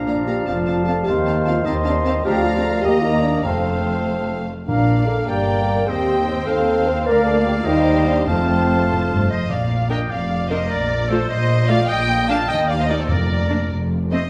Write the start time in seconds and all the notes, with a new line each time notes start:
Already playing: A#1 A#2 F3 D4 D5 F5 A#5
0.06 A#3 F5 A#5
0.26 A#3 G4 F5 A#5
0.45 F1 F2 C4 F4 F5 A5
0.66 C4 F5 A5
0.84 C4 A4 F5 A5
1.03 G4 F5 A5
1.07 D#2 D#3 C4 C5 F5 C6
1.25 C4 F5 A5
1.45 C4 F4 F5 A5
1.63 D#2 C4 D#4 C5 D#5 F5 A5
1.67 D#3 C6
1.83 C4 D4 F5 A5
2.03 C4 F5 A5
2.25 D2 F3 D4 G4 D5 F5 A#5
2.42 F4
2.54 C4 G4
2.62 A4
2.73 A#4
2.81 D#2 A#3 G4 D#5 A#5
2.85 A#3 D#5 A#5
3.01 D#4
3.15 D5
3.20 D4
3.43 F1 F2 C4 C5 F5
3.47 A3 A5
4.67 A#1 A#2 A#3 D4 D5 F5 A#5
5.06 A4
5.26 G1 G2 A#3 G4 D5 G5 A#5
5.66 A#4
5.86 D#2 C4 G4 C5 D#5 G5
6.27 C5
6.46 D#2 C4 A4 C5 F5
6.87 C5
7.05 D2 A#3 A#4 D5 F5
7.24 A4
7.47 G4
7.59 F4
7.65 D#2 G3 D#4 C5 D#5 G5
8.08 D4
8.27 F1 F2 F3 A3 C4 C5 F5 A5
8.89 A2
9.10 G2
9.29 F2 C5 D#5
9.49 A#1 A#2 D5 F5
9.89 A#3 D4 A#4 D#5 G5
10.09 F1 F2 D5 F5
10.49 A#3 D4 A#4 C5 D#5
10.68 A#1 A#2 A#4 D5
11.09 A3 F4 A4 C5
11.29 A#1 A#2 C5 D#5
11.67 A3 F4 D5 F5
11.87 A#1 A#2 D#5 G5
12.28 A#3 D4 F5 A5
12.48 D#2 D#5 G5
12.67 D5 F5
12.78 C5 D#5
12.88 A#3 D#4 A#4 D5
12.98 A4 C5
13.09 F1 F2 A#4 D5
13.50 A#3 D4
13.71 F1 F2
14.11 A3 C4 C5 D#5